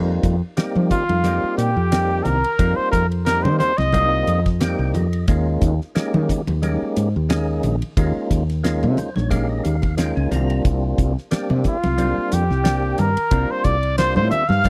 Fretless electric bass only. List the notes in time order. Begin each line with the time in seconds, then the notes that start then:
Already playing: F2
0.23 F2
0.58 muted fretless electric bass stroke
0.76 F3
1.10 F2
1.44 muted fretless electric bass stroke
1.58 A#2
1.77 F2
2.26 C2
2.59 F2
2.78 muted fretless electric bass stroke
2.93 F2
3.45 D#3
3.60 muted fretless electric bass stroke
3.79 C2
4.27 F2
4.79 C2
4.94 F2
5.28 D#2
5.62 D#2
5.96 muted fretless electric bass stroke
6.14 D#3
6.48 D#2
6.82 muted fretless electric bass stroke
6.97 G#2
7.16 D#2
7.64 A#1
7.83 muted fretless electric bass stroke
7.97 D#2
8.17 muted fretless electric bass stroke
8.31 D#2
8.83 C3
8.98 muted fretless electric bass stroke
9.17 A#1
9.65 D#2
10.17 C#2
10.31 C2
10.65 C2
10.98 C2
11.33 muted fretless electric bass stroke
11.51 C3
11.85 C2
12.18 muted fretless electric bass stroke
12.33 F2
12.50 C2
12.99 G2
13.17 muted fretless electric bass stroke
13.31 C2
13.50 muted fretless electric bass stroke
13.65 C2
14.17 A2
14.31 muted fretless electric bass stroke
14.50 G2